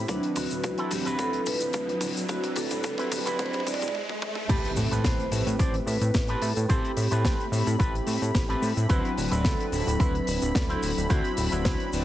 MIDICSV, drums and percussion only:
0, 0, Header, 1, 2, 480
1, 0, Start_track
1, 0, Tempo, 550459
1, 78, Time_signature, 4, 2, 24, 8
1, 10502, End_track
2, 0, Start_track
2, 0, Title_t, "Drums"
2, 73, Note_on_c, 9, 47, 71
2, 76, Note_on_c, 9, 42, 66
2, 77, Note_on_c, 9, 36, 118
2, 78, Note_on_c, 9, 82, 46
2, 160, Note_off_c, 9, 47, 0
2, 163, Note_off_c, 9, 42, 0
2, 164, Note_off_c, 9, 36, 0
2, 165, Note_off_c, 9, 82, 0
2, 202, Note_on_c, 9, 42, 57
2, 289, Note_off_c, 9, 42, 0
2, 310, Note_on_c, 9, 46, 113
2, 313, Note_on_c, 9, 47, 76
2, 316, Note_on_c, 9, 82, 85
2, 397, Note_off_c, 9, 46, 0
2, 400, Note_off_c, 9, 47, 0
2, 403, Note_off_c, 9, 82, 0
2, 439, Note_on_c, 9, 82, 51
2, 445, Note_on_c, 9, 42, 54
2, 526, Note_off_c, 9, 82, 0
2, 532, Note_off_c, 9, 42, 0
2, 554, Note_on_c, 9, 42, 69
2, 554, Note_on_c, 9, 47, 75
2, 556, Note_on_c, 9, 82, 44
2, 557, Note_on_c, 9, 36, 121
2, 641, Note_off_c, 9, 42, 0
2, 642, Note_off_c, 9, 47, 0
2, 643, Note_off_c, 9, 82, 0
2, 644, Note_off_c, 9, 36, 0
2, 678, Note_on_c, 9, 42, 59
2, 765, Note_off_c, 9, 42, 0
2, 791, Note_on_c, 9, 46, 117
2, 795, Note_on_c, 9, 47, 84
2, 798, Note_on_c, 9, 82, 86
2, 878, Note_off_c, 9, 46, 0
2, 882, Note_off_c, 9, 47, 0
2, 885, Note_off_c, 9, 82, 0
2, 927, Note_on_c, 9, 42, 51
2, 932, Note_on_c, 9, 82, 55
2, 1014, Note_off_c, 9, 42, 0
2, 1019, Note_off_c, 9, 82, 0
2, 1035, Note_on_c, 9, 42, 71
2, 1035, Note_on_c, 9, 47, 78
2, 1037, Note_on_c, 9, 36, 121
2, 1038, Note_on_c, 9, 82, 53
2, 1122, Note_off_c, 9, 42, 0
2, 1122, Note_off_c, 9, 47, 0
2, 1124, Note_off_c, 9, 36, 0
2, 1125, Note_off_c, 9, 82, 0
2, 1161, Note_on_c, 9, 42, 57
2, 1248, Note_off_c, 9, 42, 0
2, 1273, Note_on_c, 9, 82, 81
2, 1276, Note_on_c, 9, 46, 115
2, 1279, Note_on_c, 9, 47, 76
2, 1360, Note_off_c, 9, 82, 0
2, 1363, Note_off_c, 9, 46, 0
2, 1366, Note_off_c, 9, 47, 0
2, 1398, Note_on_c, 9, 42, 55
2, 1399, Note_on_c, 9, 82, 57
2, 1485, Note_off_c, 9, 42, 0
2, 1487, Note_off_c, 9, 82, 0
2, 1509, Note_on_c, 9, 42, 77
2, 1511, Note_on_c, 9, 82, 43
2, 1516, Note_on_c, 9, 47, 83
2, 1517, Note_on_c, 9, 36, 125
2, 1596, Note_off_c, 9, 42, 0
2, 1598, Note_off_c, 9, 82, 0
2, 1603, Note_off_c, 9, 47, 0
2, 1604, Note_off_c, 9, 36, 0
2, 1649, Note_on_c, 9, 42, 58
2, 1736, Note_off_c, 9, 42, 0
2, 1751, Note_on_c, 9, 47, 84
2, 1755, Note_on_c, 9, 46, 112
2, 1755, Note_on_c, 9, 82, 89
2, 1838, Note_off_c, 9, 47, 0
2, 1842, Note_off_c, 9, 46, 0
2, 1842, Note_off_c, 9, 82, 0
2, 1891, Note_on_c, 9, 82, 53
2, 1892, Note_on_c, 9, 42, 53
2, 1978, Note_off_c, 9, 82, 0
2, 1979, Note_off_c, 9, 42, 0
2, 1993, Note_on_c, 9, 42, 67
2, 1995, Note_on_c, 9, 82, 50
2, 1997, Note_on_c, 9, 36, 121
2, 2000, Note_on_c, 9, 47, 85
2, 2081, Note_off_c, 9, 42, 0
2, 2083, Note_off_c, 9, 82, 0
2, 2084, Note_off_c, 9, 36, 0
2, 2087, Note_off_c, 9, 47, 0
2, 2124, Note_on_c, 9, 47, 77
2, 2125, Note_on_c, 9, 42, 61
2, 2211, Note_off_c, 9, 47, 0
2, 2212, Note_off_c, 9, 42, 0
2, 2229, Note_on_c, 9, 46, 110
2, 2234, Note_on_c, 9, 47, 98
2, 2241, Note_on_c, 9, 82, 92
2, 2316, Note_off_c, 9, 46, 0
2, 2322, Note_off_c, 9, 47, 0
2, 2329, Note_off_c, 9, 82, 0
2, 2359, Note_on_c, 9, 82, 64
2, 2361, Note_on_c, 9, 42, 57
2, 2362, Note_on_c, 9, 47, 80
2, 2446, Note_off_c, 9, 82, 0
2, 2449, Note_off_c, 9, 42, 0
2, 2449, Note_off_c, 9, 47, 0
2, 2471, Note_on_c, 9, 82, 47
2, 2475, Note_on_c, 9, 47, 88
2, 2476, Note_on_c, 9, 42, 70
2, 2477, Note_on_c, 9, 36, 120
2, 2558, Note_off_c, 9, 82, 0
2, 2563, Note_off_c, 9, 47, 0
2, 2564, Note_off_c, 9, 36, 0
2, 2564, Note_off_c, 9, 42, 0
2, 2597, Note_on_c, 9, 47, 85
2, 2610, Note_on_c, 9, 42, 56
2, 2685, Note_off_c, 9, 47, 0
2, 2698, Note_off_c, 9, 42, 0
2, 2716, Note_on_c, 9, 46, 116
2, 2718, Note_on_c, 9, 47, 104
2, 2721, Note_on_c, 9, 82, 84
2, 2804, Note_off_c, 9, 46, 0
2, 2805, Note_off_c, 9, 47, 0
2, 2808, Note_off_c, 9, 82, 0
2, 2842, Note_on_c, 9, 42, 57
2, 2845, Note_on_c, 9, 82, 59
2, 2852, Note_on_c, 9, 47, 84
2, 2930, Note_off_c, 9, 42, 0
2, 2932, Note_off_c, 9, 82, 0
2, 2939, Note_off_c, 9, 47, 0
2, 2956, Note_on_c, 9, 42, 74
2, 2957, Note_on_c, 9, 36, 124
2, 2958, Note_on_c, 9, 47, 109
2, 2958, Note_on_c, 9, 82, 47
2, 3014, Note_off_c, 9, 47, 0
2, 3014, Note_on_c, 9, 47, 97
2, 3043, Note_off_c, 9, 42, 0
2, 3044, Note_off_c, 9, 36, 0
2, 3046, Note_off_c, 9, 82, 0
2, 3079, Note_on_c, 9, 42, 53
2, 3088, Note_off_c, 9, 47, 0
2, 3088, Note_on_c, 9, 47, 92
2, 3139, Note_off_c, 9, 47, 0
2, 3139, Note_on_c, 9, 47, 86
2, 3167, Note_off_c, 9, 42, 0
2, 3197, Note_off_c, 9, 47, 0
2, 3197, Note_on_c, 9, 47, 105
2, 3201, Note_on_c, 9, 46, 109
2, 3204, Note_on_c, 9, 82, 83
2, 3261, Note_off_c, 9, 47, 0
2, 3261, Note_on_c, 9, 47, 94
2, 3288, Note_off_c, 9, 46, 0
2, 3292, Note_off_c, 9, 82, 0
2, 3329, Note_on_c, 9, 42, 55
2, 3332, Note_on_c, 9, 82, 56
2, 3333, Note_off_c, 9, 47, 0
2, 3333, Note_on_c, 9, 47, 80
2, 3382, Note_off_c, 9, 47, 0
2, 3382, Note_on_c, 9, 47, 83
2, 3416, Note_off_c, 9, 42, 0
2, 3419, Note_off_c, 9, 82, 0
2, 3443, Note_on_c, 9, 48, 60
2, 3469, Note_off_c, 9, 47, 0
2, 3530, Note_off_c, 9, 48, 0
2, 3570, Note_on_c, 9, 48, 60
2, 3657, Note_off_c, 9, 48, 0
2, 3681, Note_on_c, 9, 47, 91
2, 3768, Note_off_c, 9, 47, 0
2, 3797, Note_on_c, 9, 45, 77
2, 3884, Note_off_c, 9, 45, 0
2, 3918, Note_on_c, 9, 36, 120
2, 3920, Note_on_c, 9, 49, 88
2, 3921, Note_on_c, 9, 82, 50
2, 3924, Note_on_c, 9, 42, 92
2, 4006, Note_off_c, 9, 36, 0
2, 4007, Note_off_c, 9, 49, 0
2, 4008, Note_off_c, 9, 82, 0
2, 4011, Note_off_c, 9, 42, 0
2, 4054, Note_on_c, 9, 42, 62
2, 4141, Note_off_c, 9, 42, 0
2, 4155, Note_on_c, 9, 82, 97
2, 4158, Note_on_c, 9, 46, 113
2, 4242, Note_off_c, 9, 82, 0
2, 4245, Note_off_c, 9, 46, 0
2, 4285, Note_on_c, 9, 42, 64
2, 4294, Note_on_c, 9, 82, 65
2, 4372, Note_off_c, 9, 42, 0
2, 4381, Note_off_c, 9, 82, 0
2, 4398, Note_on_c, 9, 36, 122
2, 4400, Note_on_c, 9, 38, 118
2, 4400, Note_on_c, 9, 82, 47
2, 4404, Note_on_c, 9, 42, 92
2, 4485, Note_off_c, 9, 36, 0
2, 4487, Note_off_c, 9, 38, 0
2, 4487, Note_off_c, 9, 82, 0
2, 4491, Note_off_c, 9, 42, 0
2, 4531, Note_on_c, 9, 42, 53
2, 4618, Note_off_c, 9, 42, 0
2, 4636, Note_on_c, 9, 46, 116
2, 4643, Note_on_c, 9, 82, 93
2, 4723, Note_off_c, 9, 46, 0
2, 4730, Note_off_c, 9, 82, 0
2, 4770, Note_on_c, 9, 42, 70
2, 4777, Note_on_c, 9, 82, 64
2, 4858, Note_off_c, 9, 42, 0
2, 4864, Note_off_c, 9, 82, 0
2, 4878, Note_on_c, 9, 36, 116
2, 4879, Note_on_c, 9, 42, 97
2, 4880, Note_on_c, 9, 82, 51
2, 4965, Note_off_c, 9, 36, 0
2, 4966, Note_off_c, 9, 42, 0
2, 4967, Note_off_c, 9, 82, 0
2, 5004, Note_on_c, 9, 42, 52
2, 5091, Note_off_c, 9, 42, 0
2, 5122, Note_on_c, 9, 46, 107
2, 5123, Note_on_c, 9, 82, 85
2, 5210, Note_off_c, 9, 46, 0
2, 5210, Note_off_c, 9, 82, 0
2, 5245, Note_on_c, 9, 42, 70
2, 5249, Note_on_c, 9, 82, 61
2, 5332, Note_off_c, 9, 42, 0
2, 5336, Note_off_c, 9, 82, 0
2, 5354, Note_on_c, 9, 42, 86
2, 5358, Note_on_c, 9, 36, 125
2, 5362, Note_on_c, 9, 38, 117
2, 5363, Note_on_c, 9, 82, 56
2, 5441, Note_off_c, 9, 42, 0
2, 5446, Note_off_c, 9, 36, 0
2, 5449, Note_off_c, 9, 38, 0
2, 5450, Note_off_c, 9, 82, 0
2, 5479, Note_on_c, 9, 42, 57
2, 5566, Note_off_c, 9, 42, 0
2, 5595, Note_on_c, 9, 46, 116
2, 5607, Note_on_c, 9, 82, 93
2, 5682, Note_off_c, 9, 46, 0
2, 5694, Note_off_c, 9, 82, 0
2, 5725, Note_on_c, 9, 42, 68
2, 5728, Note_on_c, 9, 82, 58
2, 5812, Note_off_c, 9, 42, 0
2, 5816, Note_off_c, 9, 82, 0
2, 5838, Note_on_c, 9, 42, 91
2, 5839, Note_on_c, 9, 36, 126
2, 5842, Note_on_c, 9, 82, 52
2, 5926, Note_off_c, 9, 36, 0
2, 5926, Note_off_c, 9, 42, 0
2, 5929, Note_off_c, 9, 82, 0
2, 5970, Note_on_c, 9, 42, 55
2, 6057, Note_off_c, 9, 42, 0
2, 6075, Note_on_c, 9, 46, 104
2, 6082, Note_on_c, 9, 82, 85
2, 6162, Note_off_c, 9, 46, 0
2, 6169, Note_off_c, 9, 82, 0
2, 6205, Note_on_c, 9, 42, 68
2, 6209, Note_on_c, 9, 82, 61
2, 6292, Note_off_c, 9, 42, 0
2, 6296, Note_off_c, 9, 82, 0
2, 6318, Note_on_c, 9, 36, 120
2, 6321, Note_on_c, 9, 42, 84
2, 6325, Note_on_c, 9, 38, 124
2, 6326, Note_on_c, 9, 82, 55
2, 6406, Note_off_c, 9, 36, 0
2, 6409, Note_off_c, 9, 42, 0
2, 6412, Note_off_c, 9, 38, 0
2, 6414, Note_off_c, 9, 82, 0
2, 6455, Note_on_c, 9, 42, 49
2, 6542, Note_off_c, 9, 42, 0
2, 6565, Note_on_c, 9, 46, 120
2, 6565, Note_on_c, 9, 82, 89
2, 6653, Note_off_c, 9, 46, 0
2, 6653, Note_off_c, 9, 82, 0
2, 6690, Note_on_c, 9, 82, 62
2, 6691, Note_on_c, 9, 42, 69
2, 6777, Note_off_c, 9, 82, 0
2, 6778, Note_off_c, 9, 42, 0
2, 6798, Note_on_c, 9, 36, 125
2, 6806, Note_on_c, 9, 42, 92
2, 6807, Note_on_c, 9, 82, 52
2, 6885, Note_off_c, 9, 36, 0
2, 6893, Note_off_c, 9, 42, 0
2, 6894, Note_off_c, 9, 82, 0
2, 6935, Note_on_c, 9, 42, 51
2, 7022, Note_off_c, 9, 42, 0
2, 7034, Note_on_c, 9, 46, 123
2, 7041, Note_on_c, 9, 82, 89
2, 7122, Note_off_c, 9, 46, 0
2, 7128, Note_off_c, 9, 82, 0
2, 7172, Note_on_c, 9, 42, 67
2, 7179, Note_on_c, 9, 82, 59
2, 7259, Note_off_c, 9, 42, 0
2, 7266, Note_off_c, 9, 82, 0
2, 7278, Note_on_c, 9, 36, 127
2, 7281, Note_on_c, 9, 38, 125
2, 7281, Note_on_c, 9, 42, 90
2, 7283, Note_on_c, 9, 82, 50
2, 7365, Note_off_c, 9, 36, 0
2, 7369, Note_off_c, 9, 38, 0
2, 7369, Note_off_c, 9, 42, 0
2, 7370, Note_off_c, 9, 82, 0
2, 7409, Note_on_c, 9, 42, 55
2, 7496, Note_off_c, 9, 42, 0
2, 7521, Note_on_c, 9, 82, 86
2, 7524, Note_on_c, 9, 46, 115
2, 7609, Note_off_c, 9, 82, 0
2, 7611, Note_off_c, 9, 46, 0
2, 7651, Note_on_c, 9, 42, 63
2, 7651, Note_on_c, 9, 82, 61
2, 7738, Note_off_c, 9, 42, 0
2, 7738, Note_off_c, 9, 82, 0
2, 7756, Note_on_c, 9, 42, 87
2, 7758, Note_on_c, 9, 36, 127
2, 7761, Note_on_c, 9, 82, 47
2, 7843, Note_off_c, 9, 42, 0
2, 7845, Note_off_c, 9, 36, 0
2, 7848, Note_off_c, 9, 82, 0
2, 7893, Note_on_c, 9, 42, 55
2, 7980, Note_off_c, 9, 42, 0
2, 8001, Note_on_c, 9, 46, 112
2, 8008, Note_on_c, 9, 82, 83
2, 8088, Note_off_c, 9, 46, 0
2, 8095, Note_off_c, 9, 82, 0
2, 8124, Note_on_c, 9, 42, 64
2, 8131, Note_on_c, 9, 82, 56
2, 8211, Note_off_c, 9, 42, 0
2, 8219, Note_off_c, 9, 82, 0
2, 8237, Note_on_c, 9, 38, 107
2, 8238, Note_on_c, 9, 36, 127
2, 8242, Note_on_c, 9, 42, 88
2, 8244, Note_on_c, 9, 82, 45
2, 8324, Note_off_c, 9, 38, 0
2, 8325, Note_off_c, 9, 36, 0
2, 8330, Note_off_c, 9, 42, 0
2, 8332, Note_off_c, 9, 82, 0
2, 8374, Note_on_c, 9, 42, 60
2, 8462, Note_off_c, 9, 42, 0
2, 8478, Note_on_c, 9, 46, 121
2, 8486, Note_on_c, 9, 82, 79
2, 8565, Note_off_c, 9, 46, 0
2, 8573, Note_off_c, 9, 82, 0
2, 8612, Note_on_c, 9, 42, 61
2, 8621, Note_on_c, 9, 82, 58
2, 8699, Note_off_c, 9, 42, 0
2, 8708, Note_off_c, 9, 82, 0
2, 8719, Note_on_c, 9, 36, 125
2, 8720, Note_on_c, 9, 42, 85
2, 8728, Note_on_c, 9, 82, 49
2, 8806, Note_off_c, 9, 36, 0
2, 8807, Note_off_c, 9, 42, 0
2, 8816, Note_off_c, 9, 82, 0
2, 8851, Note_on_c, 9, 42, 48
2, 8938, Note_off_c, 9, 42, 0
2, 8956, Note_on_c, 9, 46, 107
2, 8963, Note_on_c, 9, 82, 85
2, 9044, Note_off_c, 9, 46, 0
2, 9051, Note_off_c, 9, 82, 0
2, 9086, Note_on_c, 9, 82, 60
2, 9087, Note_on_c, 9, 42, 70
2, 9173, Note_off_c, 9, 82, 0
2, 9174, Note_off_c, 9, 42, 0
2, 9199, Note_on_c, 9, 36, 127
2, 9202, Note_on_c, 9, 82, 51
2, 9205, Note_on_c, 9, 38, 126
2, 9205, Note_on_c, 9, 42, 86
2, 9286, Note_off_c, 9, 36, 0
2, 9289, Note_off_c, 9, 82, 0
2, 9292, Note_off_c, 9, 38, 0
2, 9292, Note_off_c, 9, 42, 0
2, 9331, Note_on_c, 9, 42, 58
2, 9418, Note_off_c, 9, 42, 0
2, 9440, Note_on_c, 9, 46, 116
2, 9441, Note_on_c, 9, 82, 78
2, 9527, Note_off_c, 9, 46, 0
2, 9529, Note_off_c, 9, 82, 0
2, 9574, Note_on_c, 9, 42, 64
2, 9574, Note_on_c, 9, 82, 55
2, 9661, Note_off_c, 9, 42, 0
2, 9661, Note_off_c, 9, 82, 0
2, 9677, Note_on_c, 9, 82, 49
2, 9679, Note_on_c, 9, 36, 122
2, 9687, Note_on_c, 9, 42, 78
2, 9764, Note_off_c, 9, 82, 0
2, 9767, Note_off_c, 9, 36, 0
2, 9774, Note_off_c, 9, 42, 0
2, 9806, Note_on_c, 9, 42, 57
2, 9893, Note_off_c, 9, 42, 0
2, 9914, Note_on_c, 9, 46, 121
2, 9918, Note_on_c, 9, 82, 89
2, 10002, Note_off_c, 9, 46, 0
2, 10005, Note_off_c, 9, 82, 0
2, 10046, Note_on_c, 9, 42, 68
2, 10048, Note_on_c, 9, 82, 59
2, 10134, Note_off_c, 9, 42, 0
2, 10135, Note_off_c, 9, 82, 0
2, 10159, Note_on_c, 9, 36, 126
2, 10159, Note_on_c, 9, 82, 48
2, 10160, Note_on_c, 9, 38, 118
2, 10162, Note_on_c, 9, 42, 76
2, 10246, Note_off_c, 9, 36, 0
2, 10246, Note_off_c, 9, 82, 0
2, 10247, Note_off_c, 9, 38, 0
2, 10249, Note_off_c, 9, 42, 0
2, 10289, Note_on_c, 9, 42, 53
2, 10376, Note_off_c, 9, 42, 0
2, 10402, Note_on_c, 9, 82, 94
2, 10405, Note_on_c, 9, 46, 108
2, 10489, Note_off_c, 9, 82, 0
2, 10492, Note_off_c, 9, 46, 0
2, 10502, End_track
0, 0, End_of_file